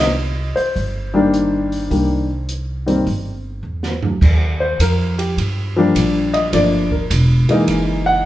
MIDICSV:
0, 0, Header, 1, 5, 480
1, 0, Start_track
1, 0, Key_signature, -3, "minor"
1, 0, Tempo, 577478
1, 1587, Time_signature, 4, 2, 24, 8
1, 3504, Key_signature, -3, "major"
1, 6861, End_track
2, 0, Start_track
2, 0, Title_t, "Grand piano"
2, 0, Program_c, 0, 0
2, 0, Note_on_c, 0, 51, 60
2, 0, Note_on_c, 0, 55, 61
2, 0, Note_on_c, 0, 58, 52
2, 0, Note_on_c, 0, 62, 63
2, 0, Note_on_c, 0, 75, 77
2, 111, Note_off_c, 0, 51, 0
2, 114, Note_off_c, 0, 55, 0
2, 117, Note_off_c, 0, 58, 0
2, 119, Note_off_c, 0, 62, 0
2, 463, Note_on_c, 0, 72, 73
2, 484, Note_off_c, 0, 75, 0
2, 944, Note_on_c, 0, 51, 65
2, 946, Note_on_c, 0, 55, 62
2, 955, Note_on_c, 0, 58, 62
2, 955, Note_on_c, 0, 62, 72
2, 1552, Note_off_c, 0, 51, 0
2, 1553, Note_off_c, 0, 55, 0
2, 1558, Note_off_c, 0, 58, 0
2, 1558, Note_off_c, 0, 62, 0
2, 1579, Note_on_c, 0, 51, 45
2, 1585, Note_on_c, 0, 55, 47
2, 1589, Note_on_c, 0, 58, 50
2, 1596, Note_on_c, 0, 62, 50
2, 1872, Note_off_c, 0, 51, 0
2, 1875, Note_off_c, 0, 55, 0
2, 1877, Note_off_c, 0, 58, 0
2, 1881, Note_off_c, 0, 62, 0
2, 2380, Note_on_c, 0, 51, 57
2, 2382, Note_on_c, 0, 55, 49
2, 2389, Note_on_c, 0, 60, 62
2, 2390, Note_on_c, 0, 58, 51
2, 2526, Note_off_c, 0, 51, 0
2, 2527, Note_off_c, 0, 55, 0
2, 2530, Note_off_c, 0, 60, 0
2, 2531, Note_off_c, 0, 58, 0
2, 2988, Note_off_c, 0, 72, 0
2, 3826, Note_on_c, 0, 72, 72
2, 3980, Note_off_c, 0, 72, 0
2, 3998, Note_on_c, 0, 70, 63
2, 4304, Note_off_c, 0, 70, 0
2, 4309, Note_on_c, 0, 67, 57
2, 4461, Note_off_c, 0, 67, 0
2, 4791, Note_on_c, 0, 53, 68
2, 4796, Note_on_c, 0, 55, 62
2, 4804, Note_on_c, 0, 58, 56
2, 4809, Note_on_c, 0, 62, 74
2, 5266, Note_on_c, 0, 75, 78
2, 5396, Note_off_c, 0, 53, 0
2, 5398, Note_off_c, 0, 55, 0
2, 5402, Note_off_c, 0, 58, 0
2, 5404, Note_off_c, 0, 62, 0
2, 5420, Note_off_c, 0, 75, 0
2, 5426, Note_on_c, 0, 53, 49
2, 5431, Note_on_c, 0, 57, 45
2, 5436, Note_on_c, 0, 74, 72
2, 5438, Note_on_c, 0, 58, 47
2, 5439, Note_on_c, 0, 62, 55
2, 5715, Note_off_c, 0, 53, 0
2, 5718, Note_off_c, 0, 57, 0
2, 5721, Note_off_c, 0, 58, 0
2, 5722, Note_off_c, 0, 62, 0
2, 5743, Note_off_c, 0, 74, 0
2, 5750, Note_on_c, 0, 70, 47
2, 5902, Note_off_c, 0, 70, 0
2, 6224, Note_on_c, 0, 52, 60
2, 6231, Note_on_c, 0, 56, 60
2, 6236, Note_on_c, 0, 58, 59
2, 6238, Note_on_c, 0, 63, 70
2, 6701, Note_on_c, 0, 78, 90
2, 6833, Note_off_c, 0, 52, 0
2, 6837, Note_off_c, 0, 56, 0
2, 6839, Note_off_c, 0, 58, 0
2, 6840, Note_off_c, 0, 63, 0
2, 6858, Note_off_c, 0, 78, 0
2, 6861, End_track
3, 0, Start_track
3, 0, Title_t, "Upright bass"
3, 0, Program_c, 1, 32
3, 0, Note_on_c, 1, 36, 76
3, 435, Note_off_c, 1, 36, 0
3, 629, Note_on_c, 1, 31, 74
3, 1554, Note_off_c, 1, 31, 0
3, 1585, Note_on_c, 1, 36, 69
3, 2511, Note_off_c, 1, 36, 0
3, 2548, Note_on_c, 1, 31, 75
3, 2993, Note_off_c, 1, 31, 0
3, 3016, Note_on_c, 1, 40, 65
3, 3467, Note_off_c, 1, 40, 0
3, 3501, Note_on_c, 1, 39, 83
3, 3968, Note_off_c, 1, 39, 0
3, 3984, Note_on_c, 1, 41, 74
3, 4450, Note_off_c, 1, 41, 0
3, 4466, Note_on_c, 1, 43, 66
3, 4931, Note_off_c, 1, 43, 0
3, 4945, Note_on_c, 1, 34, 82
3, 5411, Note_off_c, 1, 34, 0
3, 5423, Note_on_c, 1, 31, 78
3, 5890, Note_off_c, 1, 31, 0
3, 5904, Note_on_c, 1, 28, 92
3, 6204, Note_off_c, 1, 28, 0
3, 6379, Note_on_c, 1, 30, 70
3, 6849, Note_off_c, 1, 30, 0
3, 6861, End_track
4, 0, Start_track
4, 0, Title_t, "Muted upright bass strokes"
4, 472, Note_on_c, 9, 29, 33
4, 555, Note_off_c, 9, 29, 0
4, 6229, Note_on_c, 9, 29, 33
4, 6312, Note_off_c, 9, 29, 0
4, 6861, End_track
5, 0, Start_track
5, 0, Title_t, "Drums"
5, 474, Note_on_c, 9, 46, 35
5, 557, Note_off_c, 9, 46, 0
5, 630, Note_on_c, 9, 36, 28
5, 634, Note_on_c, 9, 46, 31
5, 713, Note_off_c, 9, 36, 0
5, 717, Note_off_c, 9, 46, 0
5, 1111, Note_on_c, 9, 42, 42
5, 1194, Note_off_c, 9, 42, 0
5, 1431, Note_on_c, 9, 46, 36
5, 1515, Note_off_c, 9, 46, 0
5, 1588, Note_on_c, 9, 36, 27
5, 1590, Note_on_c, 9, 46, 38
5, 1671, Note_off_c, 9, 36, 0
5, 1673, Note_off_c, 9, 46, 0
5, 2068, Note_on_c, 9, 42, 46
5, 2151, Note_off_c, 9, 42, 0
5, 2392, Note_on_c, 9, 46, 39
5, 2475, Note_off_c, 9, 46, 0
5, 2546, Note_on_c, 9, 36, 23
5, 2550, Note_on_c, 9, 46, 35
5, 2629, Note_off_c, 9, 36, 0
5, 2634, Note_off_c, 9, 46, 0
5, 3184, Note_on_c, 9, 38, 48
5, 3267, Note_off_c, 9, 38, 0
5, 3346, Note_on_c, 9, 43, 66
5, 3429, Note_off_c, 9, 43, 0
5, 3505, Note_on_c, 9, 36, 60
5, 3509, Note_on_c, 9, 49, 60
5, 3588, Note_off_c, 9, 36, 0
5, 3592, Note_off_c, 9, 49, 0
5, 3986, Note_on_c, 9, 36, 22
5, 3989, Note_on_c, 9, 44, 50
5, 3989, Note_on_c, 9, 51, 62
5, 4069, Note_off_c, 9, 36, 0
5, 4073, Note_off_c, 9, 44, 0
5, 4073, Note_off_c, 9, 51, 0
5, 4314, Note_on_c, 9, 51, 42
5, 4397, Note_off_c, 9, 51, 0
5, 4467, Note_on_c, 9, 36, 23
5, 4474, Note_on_c, 9, 51, 50
5, 4551, Note_off_c, 9, 36, 0
5, 4557, Note_off_c, 9, 51, 0
5, 4947, Note_on_c, 9, 36, 16
5, 4952, Note_on_c, 9, 44, 43
5, 4952, Note_on_c, 9, 51, 58
5, 5031, Note_off_c, 9, 36, 0
5, 5035, Note_off_c, 9, 44, 0
5, 5035, Note_off_c, 9, 51, 0
5, 5270, Note_on_c, 9, 51, 43
5, 5353, Note_off_c, 9, 51, 0
5, 5427, Note_on_c, 9, 36, 16
5, 5428, Note_on_c, 9, 51, 54
5, 5510, Note_off_c, 9, 36, 0
5, 5511, Note_off_c, 9, 51, 0
5, 5747, Note_on_c, 9, 36, 40
5, 5830, Note_off_c, 9, 36, 0
5, 5905, Note_on_c, 9, 36, 22
5, 5907, Note_on_c, 9, 44, 59
5, 5907, Note_on_c, 9, 51, 63
5, 5988, Note_off_c, 9, 36, 0
5, 5990, Note_off_c, 9, 44, 0
5, 5990, Note_off_c, 9, 51, 0
5, 6225, Note_on_c, 9, 51, 41
5, 6308, Note_off_c, 9, 51, 0
5, 6380, Note_on_c, 9, 51, 51
5, 6383, Note_on_c, 9, 36, 17
5, 6463, Note_off_c, 9, 51, 0
5, 6466, Note_off_c, 9, 36, 0
5, 6861, End_track
0, 0, End_of_file